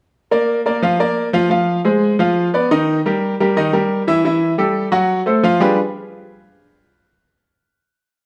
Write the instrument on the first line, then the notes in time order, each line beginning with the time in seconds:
grand piano
0.31 A#3 A#4 D5
0.66 A#3 A#4 D5
0.82 F3 F4 F5
1.00 A#3 A#4 D5
1.33 F3 F4 F5
1.50 F3 F4 F5
1.85 G#3 G#4 C5
2.19 F3 F4 F5
2.54 B3 B4 D5
2.71 D#3 D#4 D#5
3.06 G3 G4 A#4
3.40 G3 G4 A#4
3.57 D#3 D#4 D#5
3.73 G3 G4 A#4
4.07 E3 E4 E5
4.25 E3 E4 E5
4.58 G3 G4 A4
4.92 F#3 F#4 F#5
5.26 A3 A4 C5
5.43 F3 F4 F5
5.60 G3 D4 F4 G4 G#4 B4